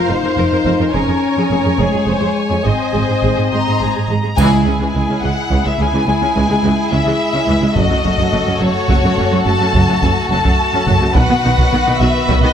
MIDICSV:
0, 0, Header, 1, 10, 480
1, 0, Start_track
1, 0, Tempo, 571429
1, 790, Time_signature, 12, 3, 24, 8
1, 4159, Tempo, 563910
1, 10610, End_track
2, 0, Start_track
2, 0, Title_t, "Violin section"
2, 0, Program_c, 0, 48
2, 0, Note_on_c, 0, 77, 44
2, 779, Note_on_c, 0, 80, 40
2, 791, Note_off_c, 0, 77, 0
2, 2872, Note_off_c, 0, 80, 0
2, 2968, Note_on_c, 0, 82, 58
2, 2972, Note_on_c, 0, 84, 41
2, 3192, Note_off_c, 0, 84, 0
2, 3204, Note_on_c, 0, 80, 36
2, 3442, Note_off_c, 0, 82, 0
2, 3444, Note_off_c, 0, 80, 0
2, 3452, Note_on_c, 0, 82, 43
2, 3674, Note_on_c, 0, 80, 69
2, 3687, Note_off_c, 0, 82, 0
2, 4361, Note_off_c, 0, 80, 0
2, 4375, Note_on_c, 0, 78, 58
2, 4748, Note_off_c, 0, 78, 0
2, 4771, Note_on_c, 0, 76, 52
2, 4885, Note_off_c, 0, 76, 0
2, 4891, Note_on_c, 0, 80, 60
2, 5116, Note_off_c, 0, 80, 0
2, 5127, Note_on_c, 0, 80, 64
2, 5828, Note_off_c, 0, 80, 0
2, 5840, Note_on_c, 0, 76, 63
2, 6560, Note_off_c, 0, 76, 0
2, 6565, Note_on_c, 0, 75, 58
2, 7272, Note_on_c, 0, 73, 62
2, 7281, Note_off_c, 0, 75, 0
2, 8002, Note_off_c, 0, 73, 0
2, 8006, Note_on_c, 0, 81, 66
2, 8705, Note_off_c, 0, 81, 0
2, 8715, Note_on_c, 0, 81, 72
2, 9424, Note_off_c, 0, 81, 0
2, 9444, Note_on_c, 0, 78, 73
2, 10160, Note_on_c, 0, 76, 63
2, 10162, Note_off_c, 0, 78, 0
2, 10521, Note_off_c, 0, 76, 0
2, 10538, Note_on_c, 0, 75, 57
2, 10610, Note_off_c, 0, 75, 0
2, 10610, End_track
3, 0, Start_track
3, 0, Title_t, "Violin section"
3, 0, Program_c, 1, 48
3, 73, Note_on_c, 1, 72, 48
3, 784, Note_on_c, 1, 70, 39
3, 787, Note_off_c, 1, 72, 0
3, 1495, Note_on_c, 1, 68, 36
3, 1499, Note_off_c, 1, 70, 0
3, 1732, Note_on_c, 1, 72, 39
3, 1737, Note_off_c, 1, 68, 0
3, 1976, Note_off_c, 1, 72, 0
3, 1981, Note_on_c, 1, 73, 33
3, 2212, Note_on_c, 1, 72, 40
3, 2223, Note_off_c, 1, 73, 0
3, 3318, Note_off_c, 1, 72, 0
3, 3684, Note_on_c, 1, 64, 50
3, 3685, Note_on_c, 1, 68, 49
3, 6526, Note_off_c, 1, 64, 0
3, 6527, Note_off_c, 1, 68, 0
3, 6545, Note_on_c, 1, 69, 40
3, 6546, Note_on_c, 1, 66, 41
3, 9402, Note_off_c, 1, 69, 0
3, 9403, Note_off_c, 1, 66, 0
3, 9437, Note_on_c, 1, 66, 47
3, 9438, Note_on_c, 1, 71, 45
3, 10610, Note_off_c, 1, 66, 0
3, 10610, Note_off_c, 1, 71, 0
3, 10610, End_track
4, 0, Start_track
4, 0, Title_t, "French horn section"
4, 0, Program_c, 2, 60
4, 79, Note_on_c, 2, 63, 59
4, 790, Note_off_c, 2, 63, 0
4, 792, Note_on_c, 2, 61, 59
4, 1489, Note_off_c, 2, 61, 0
4, 1511, Note_on_c, 2, 56, 50
4, 2217, Note_on_c, 2, 60, 51
4, 2227, Note_off_c, 2, 56, 0
4, 3441, Note_off_c, 2, 60, 0
4, 3680, Note_on_c, 2, 64, 54
4, 3685, Note_on_c, 2, 56, 55
4, 6524, Note_off_c, 2, 64, 0
4, 6527, Note_off_c, 2, 56, 0
4, 6555, Note_on_c, 2, 57, 47
4, 6556, Note_on_c, 2, 66, 46
4, 9408, Note_off_c, 2, 66, 0
4, 9441, Note_off_c, 2, 57, 0
4, 9451, Note_on_c, 2, 59, 52
4, 9453, Note_on_c, 2, 51, 53
4, 10610, Note_off_c, 2, 51, 0
4, 10610, Note_off_c, 2, 59, 0
4, 10610, End_track
5, 0, Start_track
5, 0, Title_t, "Viola section"
5, 0, Program_c, 3, 48
5, 0, Note_on_c, 3, 72, 43
5, 75, Note_on_c, 3, 70, 32
5, 123, Note_off_c, 3, 70, 0
5, 204, Note_on_c, 3, 70, 46
5, 250, Note_off_c, 3, 70, 0
5, 319, Note_on_c, 3, 70, 31
5, 366, Note_off_c, 3, 70, 0
5, 444, Note_on_c, 3, 70, 34
5, 489, Note_off_c, 3, 70, 0
5, 556, Note_on_c, 3, 70, 41
5, 603, Note_off_c, 3, 70, 0
5, 677, Note_on_c, 3, 70, 32
5, 723, Note_off_c, 3, 70, 0
5, 786, Note_off_c, 3, 72, 0
5, 793, Note_on_c, 3, 68, 41
5, 793, Note_on_c, 3, 73, 39
5, 840, Note_off_c, 3, 68, 0
5, 920, Note_on_c, 3, 68, 27
5, 965, Note_off_c, 3, 68, 0
5, 1156, Note_on_c, 3, 68, 46
5, 1201, Note_off_c, 3, 68, 0
5, 1271, Note_on_c, 3, 68, 30
5, 1317, Note_off_c, 3, 68, 0
5, 1382, Note_on_c, 3, 68, 28
5, 1430, Note_off_c, 3, 68, 0
5, 1494, Note_on_c, 3, 68, 44
5, 1543, Note_off_c, 3, 68, 0
5, 1613, Note_on_c, 3, 68, 29
5, 1663, Note_off_c, 3, 68, 0
5, 1726, Note_on_c, 3, 68, 37
5, 1776, Note_off_c, 3, 68, 0
5, 1846, Note_on_c, 3, 68, 28
5, 1897, Note_off_c, 3, 68, 0
5, 2085, Note_on_c, 3, 68, 39
5, 2137, Note_off_c, 3, 68, 0
5, 2195, Note_off_c, 3, 73, 0
5, 2205, Note_on_c, 3, 68, 30
5, 2214, Note_on_c, 3, 75, 36
5, 2257, Note_off_c, 3, 68, 0
5, 2451, Note_on_c, 3, 68, 36
5, 2503, Note_off_c, 3, 68, 0
5, 2576, Note_on_c, 3, 68, 31
5, 2629, Note_off_c, 3, 68, 0
5, 2709, Note_on_c, 3, 68, 44
5, 2760, Note_off_c, 3, 68, 0
5, 2829, Note_on_c, 3, 68, 34
5, 2880, Note_off_c, 3, 68, 0
5, 2952, Note_on_c, 3, 68, 30
5, 3002, Note_off_c, 3, 68, 0
5, 3075, Note_on_c, 3, 68, 39
5, 3124, Note_off_c, 3, 68, 0
5, 3195, Note_on_c, 3, 68, 31
5, 3245, Note_off_c, 3, 68, 0
5, 3321, Note_on_c, 3, 68, 27
5, 3370, Note_off_c, 3, 68, 0
5, 3441, Note_on_c, 3, 68, 33
5, 3489, Note_off_c, 3, 68, 0
5, 3509, Note_off_c, 3, 75, 0
5, 3554, Note_on_c, 3, 68, 30
5, 3604, Note_off_c, 3, 68, 0
5, 3680, Note_on_c, 3, 52, 66
5, 3682, Note_on_c, 3, 56, 64
5, 3790, Note_off_c, 3, 56, 0
5, 3792, Note_off_c, 3, 52, 0
5, 3800, Note_on_c, 3, 56, 30
5, 3803, Note_off_c, 3, 56, 0
5, 3803, Note_on_c, 3, 56, 34
5, 3850, Note_off_c, 3, 56, 0
5, 3924, Note_on_c, 3, 61, 29
5, 3927, Note_on_c, 3, 56, 34
5, 3971, Note_off_c, 3, 61, 0
5, 3974, Note_off_c, 3, 56, 0
5, 4036, Note_on_c, 3, 52, 43
5, 4039, Note_on_c, 3, 56, 49
5, 4084, Note_off_c, 3, 52, 0
5, 4087, Note_off_c, 3, 56, 0
5, 4157, Note_on_c, 3, 56, 32
5, 4206, Note_off_c, 3, 56, 0
5, 4279, Note_on_c, 3, 56, 31
5, 4283, Note_on_c, 3, 61, 32
5, 4327, Note_off_c, 3, 56, 0
5, 4330, Note_off_c, 3, 61, 0
5, 4397, Note_on_c, 3, 52, 42
5, 4397, Note_on_c, 3, 56, 44
5, 4446, Note_off_c, 3, 52, 0
5, 4446, Note_off_c, 3, 56, 0
5, 4631, Note_on_c, 3, 52, 51
5, 4631, Note_on_c, 3, 56, 48
5, 4681, Note_off_c, 3, 52, 0
5, 4681, Note_off_c, 3, 56, 0
5, 4750, Note_on_c, 3, 56, 30
5, 4755, Note_off_c, 3, 56, 0
5, 4755, Note_on_c, 3, 56, 34
5, 4804, Note_off_c, 3, 56, 0
5, 4883, Note_on_c, 3, 56, 39
5, 4883, Note_on_c, 3, 61, 35
5, 4930, Note_off_c, 3, 56, 0
5, 4931, Note_off_c, 3, 61, 0
5, 4998, Note_on_c, 3, 52, 52
5, 4998, Note_on_c, 3, 56, 44
5, 5046, Note_off_c, 3, 52, 0
5, 5046, Note_off_c, 3, 56, 0
5, 5116, Note_on_c, 3, 56, 34
5, 5120, Note_off_c, 3, 56, 0
5, 5120, Note_on_c, 3, 56, 36
5, 5168, Note_off_c, 3, 56, 0
5, 5233, Note_on_c, 3, 61, 34
5, 5236, Note_on_c, 3, 56, 39
5, 5283, Note_off_c, 3, 61, 0
5, 5284, Note_off_c, 3, 56, 0
5, 5352, Note_on_c, 3, 52, 50
5, 5355, Note_on_c, 3, 56, 51
5, 5402, Note_off_c, 3, 52, 0
5, 5404, Note_off_c, 3, 56, 0
5, 5476, Note_on_c, 3, 56, 35
5, 5479, Note_off_c, 3, 56, 0
5, 5479, Note_on_c, 3, 56, 42
5, 5527, Note_off_c, 3, 56, 0
5, 5588, Note_on_c, 3, 52, 52
5, 5590, Note_on_c, 3, 56, 52
5, 5638, Note_off_c, 3, 52, 0
5, 5639, Note_off_c, 3, 56, 0
5, 5829, Note_on_c, 3, 61, 37
5, 5830, Note_on_c, 3, 56, 41
5, 5879, Note_off_c, 3, 61, 0
5, 5880, Note_off_c, 3, 56, 0
5, 5953, Note_on_c, 3, 56, 50
5, 5954, Note_on_c, 3, 52, 48
5, 6002, Note_off_c, 3, 56, 0
5, 6003, Note_off_c, 3, 52, 0
5, 6195, Note_on_c, 3, 61, 38
5, 6199, Note_on_c, 3, 56, 38
5, 6244, Note_off_c, 3, 61, 0
5, 6247, Note_off_c, 3, 56, 0
5, 6306, Note_on_c, 3, 52, 46
5, 6310, Note_on_c, 3, 56, 49
5, 6356, Note_off_c, 3, 52, 0
5, 6360, Note_off_c, 3, 56, 0
5, 6424, Note_on_c, 3, 56, 38
5, 6427, Note_off_c, 3, 56, 0
5, 6427, Note_on_c, 3, 56, 37
5, 6478, Note_off_c, 3, 56, 0
5, 6548, Note_on_c, 3, 54, 47
5, 6552, Note_off_c, 3, 54, 0
5, 6552, Note_on_c, 3, 54, 50
5, 6601, Note_off_c, 3, 54, 0
5, 6661, Note_on_c, 3, 54, 36
5, 6661, Note_on_c, 3, 57, 30
5, 6712, Note_off_c, 3, 57, 0
5, 6713, Note_off_c, 3, 54, 0
5, 6786, Note_on_c, 3, 54, 33
5, 6788, Note_on_c, 3, 61, 33
5, 6836, Note_off_c, 3, 54, 0
5, 6838, Note_off_c, 3, 61, 0
5, 6920, Note_on_c, 3, 54, 49
5, 6922, Note_off_c, 3, 54, 0
5, 6922, Note_on_c, 3, 54, 51
5, 6969, Note_off_c, 3, 54, 0
5, 7027, Note_on_c, 3, 57, 33
5, 7029, Note_on_c, 3, 54, 37
5, 7077, Note_off_c, 3, 57, 0
5, 7079, Note_off_c, 3, 54, 0
5, 7147, Note_on_c, 3, 54, 35
5, 7148, Note_on_c, 3, 61, 38
5, 7197, Note_off_c, 3, 54, 0
5, 7198, Note_off_c, 3, 61, 0
5, 7263, Note_on_c, 3, 54, 56
5, 7268, Note_off_c, 3, 54, 0
5, 7268, Note_on_c, 3, 54, 52
5, 7318, Note_off_c, 3, 54, 0
5, 7509, Note_on_c, 3, 54, 54
5, 7513, Note_off_c, 3, 54, 0
5, 7513, Note_on_c, 3, 54, 51
5, 7563, Note_off_c, 3, 54, 0
5, 7637, Note_on_c, 3, 57, 36
5, 7641, Note_on_c, 3, 54, 40
5, 7687, Note_off_c, 3, 57, 0
5, 7690, Note_off_c, 3, 54, 0
5, 7759, Note_on_c, 3, 54, 37
5, 7760, Note_on_c, 3, 61, 34
5, 7809, Note_off_c, 3, 54, 0
5, 7809, Note_off_c, 3, 61, 0
5, 7880, Note_on_c, 3, 54, 48
5, 7882, Note_off_c, 3, 54, 0
5, 7882, Note_on_c, 3, 54, 50
5, 7931, Note_off_c, 3, 54, 0
5, 7998, Note_on_c, 3, 54, 34
5, 7998, Note_on_c, 3, 57, 34
5, 8047, Note_off_c, 3, 54, 0
5, 8047, Note_off_c, 3, 57, 0
5, 8117, Note_on_c, 3, 54, 39
5, 8122, Note_on_c, 3, 61, 37
5, 8166, Note_off_c, 3, 54, 0
5, 8170, Note_off_c, 3, 61, 0
5, 8239, Note_on_c, 3, 54, 49
5, 8288, Note_off_c, 3, 54, 0
5, 8365, Note_on_c, 3, 54, 37
5, 8367, Note_on_c, 3, 57, 43
5, 8413, Note_off_c, 3, 54, 0
5, 8415, Note_off_c, 3, 57, 0
5, 8485, Note_on_c, 3, 54, 52
5, 8533, Note_off_c, 3, 54, 0
5, 8734, Note_on_c, 3, 54, 42
5, 8734, Note_on_c, 3, 61, 40
5, 8780, Note_off_c, 3, 54, 0
5, 8780, Note_off_c, 3, 61, 0
5, 8834, Note_on_c, 3, 54, 60
5, 8838, Note_off_c, 3, 54, 0
5, 8838, Note_on_c, 3, 54, 50
5, 8887, Note_off_c, 3, 54, 0
5, 9081, Note_on_c, 3, 54, 45
5, 9087, Note_on_c, 3, 61, 44
5, 9130, Note_off_c, 3, 54, 0
5, 9134, Note_off_c, 3, 61, 0
5, 9197, Note_on_c, 3, 54, 54
5, 9200, Note_off_c, 3, 54, 0
5, 9200, Note_on_c, 3, 54, 56
5, 9248, Note_off_c, 3, 54, 0
5, 9317, Note_on_c, 3, 57, 46
5, 9318, Note_on_c, 3, 54, 39
5, 9366, Note_off_c, 3, 57, 0
5, 9367, Note_off_c, 3, 54, 0
5, 9431, Note_on_c, 3, 54, 55
5, 9433, Note_on_c, 3, 51, 49
5, 9481, Note_off_c, 3, 54, 0
5, 9482, Note_off_c, 3, 51, 0
5, 9554, Note_on_c, 3, 51, 36
5, 9556, Note_on_c, 3, 59, 35
5, 9604, Note_off_c, 3, 51, 0
5, 9605, Note_off_c, 3, 59, 0
5, 9683, Note_on_c, 3, 63, 34
5, 9684, Note_on_c, 3, 51, 38
5, 9731, Note_off_c, 3, 63, 0
5, 9732, Note_off_c, 3, 51, 0
5, 9808, Note_on_c, 3, 54, 57
5, 9811, Note_on_c, 3, 51, 52
5, 9855, Note_off_c, 3, 54, 0
5, 9857, Note_off_c, 3, 51, 0
5, 9930, Note_on_c, 3, 51, 33
5, 9930, Note_on_c, 3, 59, 35
5, 9976, Note_off_c, 3, 51, 0
5, 9977, Note_off_c, 3, 59, 0
5, 10042, Note_on_c, 3, 63, 39
5, 10046, Note_on_c, 3, 51, 39
5, 10090, Note_off_c, 3, 63, 0
5, 10093, Note_off_c, 3, 51, 0
5, 10163, Note_on_c, 3, 51, 51
5, 10163, Note_on_c, 3, 54, 59
5, 10211, Note_off_c, 3, 51, 0
5, 10211, Note_off_c, 3, 54, 0
5, 10399, Note_on_c, 3, 51, 62
5, 10401, Note_on_c, 3, 54, 59
5, 10447, Note_off_c, 3, 51, 0
5, 10449, Note_off_c, 3, 54, 0
5, 10527, Note_on_c, 3, 59, 44
5, 10531, Note_on_c, 3, 51, 40
5, 10574, Note_off_c, 3, 59, 0
5, 10577, Note_off_c, 3, 51, 0
5, 10610, End_track
6, 0, Start_track
6, 0, Title_t, "Timpani"
6, 0, Program_c, 4, 47
6, 3690, Note_on_c, 4, 49, 49
6, 4369, Note_off_c, 4, 49, 0
6, 10610, End_track
7, 0, Start_track
7, 0, Title_t, "Cello section"
7, 0, Program_c, 5, 48
7, 68, Note_on_c, 5, 41, 33
7, 118, Note_off_c, 5, 41, 0
7, 192, Note_on_c, 5, 41, 45
7, 240, Note_off_c, 5, 41, 0
7, 318, Note_on_c, 5, 41, 33
7, 364, Note_off_c, 5, 41, 0
7, 433, Note_on_c, 5, 41, 32
7, 480, Note_off_c, 5, 41, 0
7, 546, Note_on_c, 5, 41, 48
7, 595, Note_off_c, 5, 41, 0
7, 670, Note_on_c, 5, 41, 35
7, 718, Note_off_c, 5, 41, 0
7, 791, Note_on_c, 5, 41, 44
7, 838, Note_off_c, 5, 41, 0
7, 904, Note_on_c, 5, 41, 31
7, 953, Note_off_c, 5, 41, 0
7, 1148, Note_on_c, 5, 41, 41
7, 1195, Note_off_c, 5, 41, 0
7, 1264, Note_on_c, 5, 41, 32
7, 1312, Note_off_c, 5, 41, 0
7, 1386, Note_on_c, 5, 41, 32
7, 1433, Note_off_c, 5, 41, 0
7, 1501, Note_on_c, 5, 41, 42
7, 1549, Note_off_c, 5, 41, 0
7, 1625, Note_on_c, 5, 41, 31
7, 1672, Note_off_c, 5, 41, 0
7, 1744, Note_on_c, 5, 41, 41
7, 1791, Note_off_c, 5, 41, 0
7, 1856, Note_on_c, 5, 41, 30
7, 1905, Note_off_c, 5, 41, 0
7, 2108, Note_on_c, 5, 41, 47
7, 2155, Note_off_c, 5, 41, 0
7, 2224, Note_on_c, 5, 44, 30
7, 2273, Note_off_c, 5, 44, 0
7, 2474, Note_on_c, 5, 44, 42
7, 2522, Note_off_c, 5, 44, 0
7, 2600, Note_on_c, 5, 44, 30
7, 2647, Note_off_c, 5, 44, 0
7, 2716, Note_on_c, 5, 44, 38
7, 2765, Note_off_c, 5, 44, 0
7, 2840, Note_on_c, 5, 44, 28
7, 2889, Note_off_c, 5, 44, 0
7, 2968, Note_on_c, 5, 44, 30
7, 3015, Note_off_c, 5, 44, 0
7, 3087, Note_on_c, 5, 44, 40
7, 3134, Note_off_c, 5, 44, 0
7, 3212, Note_on_c, 5, 44, 27
7, 3258, Note_off_c, 5, 44, 0
7, 3335, Note_on_c, 5, 44, 30
7, 3380, Note_off_c, 5, 44, 0
7, 3452, Note_on_c, 5, 44, 41
7, 3498, Note_off_c, 5, 44, 0
7, 3569, Note_on_c, 5, 44, 30
7, 3616, Note_off_c, 5, 44, 0
7, 3679, Note_on_c, 5, 37, 74
7, 3787, Note_off_c, 5, 37, 0
7, 3797, Note_on_c, 5, 37, 36
7, 3846, Note_off_c, 5, 37, 0
7, 3913, Note_on_c, 5, 37, 34
7, 3963, Note_off_c, 5, 37, 0
7, 4030, Note_on_c, 5, 37, 47
7, 4080, Note_off_c, 5, 37, 0
7, 4155, Note_on_c, 5, 37, 35
7, 4204, Note_off_c, 5, 37, 0
7, 4282, Note_on_c, 5, 37, 37
7, 4330, Note_off_c, 5, 37, 0
7, 4394, Note_on_c, 5, 37, 46
7, 4443, Note_off_c, 5, 37, 0
7, 4631, Note_on_c, 5, 37, 48
7, 4681, Note_off_c, 5, 37, 0
7, 4757, Note_on_c, 5, 37, 36
7, 4805, Note_off_c, 5, 37, 0
7, 4880, Note_on_c, 5, 37, 31
7, 4928, Note_off_c, 5, 37, 0
7, 4989, Note_on_c, 5, 37, 54
7, 5039, Note_off_c, 5, 37, 0
7, 5112, Note_on_c, 5, 37, 35
7, 5161, Note_off_c, 5, 37, 0
7, 5235, Note_on_c, 5, 37, 35
7, 5284, Note_off_c, 5, 37, 0
7, 5356, Note_on_c, 5, 37, 49
7, 5405, Note_off_c, 5, 37, 0
7, 5475, Note_on_c, 5, 37, 36
7, 5524, Note_off_c, 5, 37, 0
7, 5591, Note_on_c, 5, 37, 49
7, 5641, Note_off_c, 5, 37, 0
7, 5830, Note_on_c, 5, 37, 35
7, 5880, Note_off_c, 5, 37, 0
7, 5946, Note_on_c, 5, 37, 48
7, 5997, Note_off_c, 5, 37, 0
7, 6190, Note_on_c, 5, 37, 34
7, 6240, Note_off_c, 5, 37, 0
7, 6301, Note_on_c, 5, 37, 51
7, 6353, Note_off_c, 5, 37, 0
7, 6426, Note_on_c, 5, 37, 36
7, 6477, Note_off_c, 5, 37, 0
7, 6550, Note_on_c, 5, 42, 54
7, 6600, Note_off_c, 5, 42, 0
7, 6668, Note_on_c, 5, 42, 36
7, 6718, Note_off_c, 5, 42, 0
7, 6788, Note_on_c, 5, 42, 36
7, 6838, Note_off_c, 5, 42, 0
7, 6907, Note_on_c, 5, 42, 53
7, 6957, Note_off_c, 5, 42, 0
7, 7028, Note_on_c, 5, 42, 36
7, 7078, Note_off_c, 5, 42, 0
7, 7142, Note_on_c, 5, 42, 38
7, 7194, Note_off_c, 5, 42, 0
7, 7264, Note_on_c, 5, 42, 51
7, 7315, Note_off_c, 5, 42, 0
7, 7503, Note_on_c, 5, 42, 53
7, 7555, Note_off_c, 5, 42, 0
7, 7623, Note_on_c, 5, 42, 37
7, 7675, Note_off_c, 5, 42, 0
7, 7743, Note_on_c, 5, 42, 35
7, 7796, Note_off_c, 5, 42, 0
7, 7864, Note_on_c, 5, 42, 55
7, 7917, Note_off_c, 5, 42, 0
7, 7985, Note_on_c, 5, 42, 39
7, 8037, Note_off_c, 5, 42, 0
7, 8110, Note_on_c, 5, 42, 36
7, 8161, Note_off_c, 5, 42, 0
7, 8233, Note_on_c, 5, 42, 55
7, 8283, Note_off_c, 5, 42, 0
7, 8353, Note_on_c, 5, 42, 41
7, 8404, Note_off_c, 5, 42, 0
7, 8468, Note_on_c, 5, 42, 52
7, 8520, Note_off_c, 5, 42, 0
7, 8706, Note_on_c, 5, 42, 37
7, 8758, Note_off_c, 5, 42, 0
7, 8824, Note_on_c, 5, 42, 53
7, 8876, Note_off_c, 5, 42, 0
7, 9073, Note_on_c, 5, 42, 41
7, 9123, Note_off_c, 5, 42, 0
7, 9194, Note_on_c, 5, 42, 55
7, 9244, Note_off_c, 5, 42, 0
7, 9317, Note_on_c, 5, 42, 40
7, 9366, Note_off_c, 5, 42, 0
7, 9438, Note_on_c, 5, 47, 57
7, 9487, Note_off_c, 5, 47, 0
7, 9562, Note_on_c, 5, 47, 39
7, 9610, Note_off_c, 5, 47, 0
7, 9683, Note_on_c, 5, 47, 40
7, 9731, Note_off_c, 5, 47, 0
7, 9798, Note_on_c, 5, 47, 57
7, 9847, Note_off_c, 5, 47, 0
7, 9921, Note_on_c, 5, 47, 41
7, 9969, Note_off_c, 5, 47, 0
7, 10046, Note_on_c, 5, 47, 43
7, 10093, Note_off_c, 5, 47, 0
7, 10162, Note_on_c, 5, 47, 58
7, 10210, Note_off_c, 5, 47, 0
7, 10403, Note_on_c, 5, 47, 59
7, 10450, Note_off_c, 5, 47, 0
7, 10512, Note_on_c, 5, 47, 41
7, 10562, Note_off_c, 5, 47, 0
7, 10610, End_track
8, 0, Start_track
8, 0, Title_t, "Double bass section"
8, 0, Program_c, 6, 48
8, 82, Note_on_c, 6, 29, 32
8, 129, Note_off_c, 6, 29, 0
8, 319, Note_on_c, 6, 29, 33
8, 366, Note_off_c, 6, 29, 0
8, 555, Note_on_c, 6, 29, 46
8, 602, Note_off_c, 6, 29, 0
8, 799, Note_on_c, 6, 29, 42
8, 845, Note_off_c, 6, 29, 0
8, 1273, Note_on_c, 6, 29, 31
8, 1319, Note_off_c, 6, 29, 0
8, 1506, Note_on_c, 6, 29, 42
8, 1552, Note_off_c, 6, 29, 0
8, 1739, Note_on_c, 6, 29, 43
8, 1787, Note_off_c, 6, 29, 0
8, 2229, Note_on_c, 6, 32, 29
8, 2277, Note_off_c, 6, 32, 0
8, 2473, Note_on_c, 6, 32, 44
8, 2522, Note_off_c, 6, 32, 0
8, 2722, Note_on_c, 6, 32, 42
8, 2770, Note_off_c, 6, 32, 0
8, 2965, Note_on_c, 6, 32, 28
8, 3012, Note_off_c, 6, 32, 0
8, 3202, Note_on_c, 6, 32, 29
8, 3250, Note_off_c, 6, 32, 0
8, 3435, Note_on_c, 6, 32, 37
8, 3485, Note_off_c, 6, 32, 0
8, 3677, Note_on_c, 6, 37, 68
8, 3790, Note_off_c, 6, 37, 0
8, 3921, Note_on_c, 6, 37, 34
8, 3968, Note_off_c, 6, 37, 0
8, 4155, Note_on_c, 6, 37, 35
8, 4204, Note_off_c, 6, 37, 0
8, 4395, Note_on_c, 6, 37, 48
8, 4444, Note_off_c, 6, 37, 0
8, 4639, Note_on_c, 6, 37, 49
8, 4687, Note_off_c, 6, 37, 0
8, 4875, Note_on_c, 6, 37, 33
8, 4924, Note_off_c, 6, 37, 0
8, 5115, Note_on_c, 6, 37, 33
8, 5164, Note_off_c, 6, 37, 0
8, 5362, Note_on_c, 6, 37, 52
8, 5409, Note_off_c, 6, 37, 0
8, 5598, Note_on_c, 6, 37, 48
8, 5646, Note_off_c, 6, 37, 0
8, 5839, Note_on_c, 6, 37, 36
8, 5887, Note_off_c, 6, 37, 0
8, 6311, Note_on_c, 6, 37, 50
8, 6360, Note_off_c, 6, 37, 0
8, 6559, Note_on_c, 6, 30, 50
8, 6607, Note_off_c, 6, 30, 0
8, 6797, Note_on_c, 6, 30, 37
8, 6845, Note_off_c, 6, 30, 0
8, 7036, Note_on_c, 6, 30, 36
8, 7084, Note_off_c, 6, 30, 0
8, 7273, Note_on_c, 6, 30, 51
8, 7322, Note_off_c, 6, 30, 0
8, 7516, Note_on_c, 6, 30, 51
8, 7565, Note_off_c, 6, 30, 0
8, 7761, Note_on_c, 6, 30, 36
8, 7810, Note_off_c, 6, 30, 0
8, 7996, Note_on_c, 6, 30, 37
8, 8046, Note_off_c, 6, 30, 0
8, 8241, Note_on_c, 6, 30, 56
8, 8290, Note_off_c, 6, 30, 0
8, 8483, Note_on_c, 6, 30, 55
8, 8531, Note_off_c, 6, 30, 0
8, 8722, Note_on_c, 6, 30, 40
8, 8771, Note_off_c, 6, 30, 0
8, 9210, Note_on_c, 6, 30, 53
8, 9257, Note_off_c, 6, 30, 0
8, 9447, Note_on_c, 6, 35, 57
8, 9494, Note_off_c, 6, 35, 0
8, 9692, Note_on_c, 6, 35, 40
8, 9738, Note_off_c, 6, 35, 0
8, 9929, Note_on_c, 6, 35, 38
8, 9976, Note_off_c, 6, 35, 0
8, 10164, Note_on_c, 6, 35, 53
8, 10211, Note_off_c, 6, 35, 0
8, 10409, Note_on_c, 6, 35, 59
8, 10456, Note_off_c, 6, 35, 0
8, 10610, End_track
9, 0, Start_track
9, 0, Title_t, "Taiko and cinematic ensemble drums"
9, 3674, Note_on_c, 9, 41, 50
9, 3758, Note_off_c, 9, 41, 0
9, 4757, Note_on_c, 9, 41, 32
9, 4843, Note_off_c, 9, 41, 0
9, 6547, Note_on_c, 9, 41, 75
9, 6633, Note_off_c, 9, 41, 0
9, 6905, Note_on_c, 9, 41, 58
9, 6991, Note_off_c, 9, 41, 0
9, 7509, Note_on_c, 9, 41, 63
9, 7594, Note_off_c, 9, 41, 0
9, 8235, Note_on_c, 9, 41, 57
9, 8320, Note_off_c, 9, 41, 0
9, 8475, Note_on_c, 9, 41, 62
9, 8560, Note_off_c, 9, 41, 0
9, 8838, Note_on_c, 9, 41, 62
9, 8923, Note_off_c, 9, 41, 0
9, 9193, Note_on_c, 9, 41, 66
9, 9278, Note_off_c, 9, 41, 0
9, 9438, Note_on_c, 9, 41, 81
9, 9523, Note_off_c, 9, 41, 0
9, 9801, Note_on_c, 9, 41, 62
9, 9887, Note_off_c, 9, 41, 0
9, 10399, Note_on_c, 9, 41, 65
9, 10484, Note_off_c, 9, 41, 0
9, 10610, End_track
10, 0, Start_track
10, 0, Title_t, "Drums"
10, 3680, Note_on_c, 9, 81, 28
10, 3764, Note_off_c, 9, 81, 0
10, 10610, End_track
0, 0, End_of_file